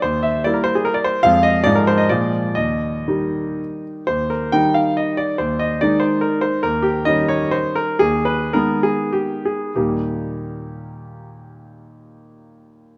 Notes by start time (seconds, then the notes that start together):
0.02 D#2 C5
0.23 E5
0.44 G3 A#3 E4 D5
0.54 A#4
0.64 C5
0.75 G#4
0.85 A#4
0.94 D5
1.04 C5
1.23 F2 F3 G#3 F4 F5
1.43 D#5
1.64 G#2 F3 G#3 F4 D5
1.75 A#4
1.87 C5
1.98 D#5
2.09 A#2 F3 G#3 F4 D5
2.55 D#2 D#5
3.08 D#3 G3 G4
4.07 D#2 C5
4.30 A#4
4.52 D#3 G3 D#4 G5
4.74 F5
4.97 D#5
5.17 D5
5.38 D#2 C5
5.59 D#5
5.81 D#3 G#3 D#4 D5
6.00 C5
6.21 A#4
6.41 C5
6.63 D#2 A#4
6.82 G4
7.05 D#3 G3 C#4 D#5
7.28 C#5
7.51 C5
7.75 A#4
7.99 D#2 G#4
8.25 B4
8.53 D#3 G#3 B3 A#4
8.83 G#4
9.13 G4
9.45 G#4
9.75 D#2 A#2 G3 A#3 D#4 G4